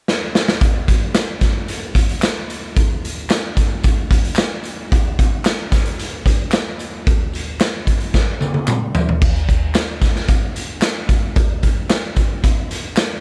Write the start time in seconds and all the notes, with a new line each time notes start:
0.08 snare
0.35 snare
0.48 snare
0.61 kick, closed hi-hat
0.88 kick, closed hi-hat
1.14 snare, clap, closed hi-hat, tambourine
1.41 kick, snare, closed hi-hat, tambourine
1.68 closed hi-hat, tambourine
1.95 kick, closed hi-hat, tambourine
2.09 closed hi-hat
2.22 snare, clap, closed hi-hat, tambourine
2.50 closed hi-hat, tambourine
2.76 kick, closed hi-hat
3.05 closed hi-hat
3.30 snare, clap, closed hi-hat, tambourine
3.57 kick, closed hi-hat, tambourine
3.84 kick, closed hi-hat, tambourine
4.11 kick, closed hi-hat, tambourine
4.25 closed hi-hat
4.36 snare, clap, closed hi-hat, tambourine
4.63 closed hi-hat, tambourine
4.92 kick, closed hi-hat
5.19 kick, closed hi-hat
5.45 snare, clap, closed hi-hat, tambourine
5.72 kick, snare, closed hi-hat, tambourine
5.86 closed hi-hat
5.99 closed hi-hat, tambourine
6.26 kick, closed hi-hat, tambourine
6.52 snare, clap, closed hi-hat, tambourine
6.79 closed hi-hat, tambourine
7.07 kick, closed hi-hat
7.33 closed hi-hat, tambourine
7.60 snare, clap, closed hi-hat, tambourine
7.87 kick, closed hi-hat, tambourine
8.00 closed hi-hat
8.14 kick, snare, tambourine
8.41 high tom, tambourine
8.54 high tom
8.67 clap, mid tom, tambourine
8.95 floor tom, tambourine
9.09 floor tom
9.22 kick, crash
9.36 closed hi-hat
9.49 kick, closed hi-hat, tambourine
9.75 snare, clap, closed hi-hat, tambourine
10.01 kick, snare, closed hi-hat, tambourine
10.16 snare
10.28 kick, closed hi-hat, tambourine
10.56 closed hi-hat, tambourine
10.82 snare, clap, closed hi-hat, tambourine
11.09 kick, closed hi-hat, tambourine
11.36 kick, closed hi-hat
11.63 kick, closed hi-hat, tambourine
11.90 snare, clap, closed hi-hat, tambourine
12.16 kick, closed hi-hat, tambourine
12.44 kick, closed hi-hat, tambourine
12.71 closed hi-hat, tambourine
12.97 snare, clap, closed hi-hat, tambourine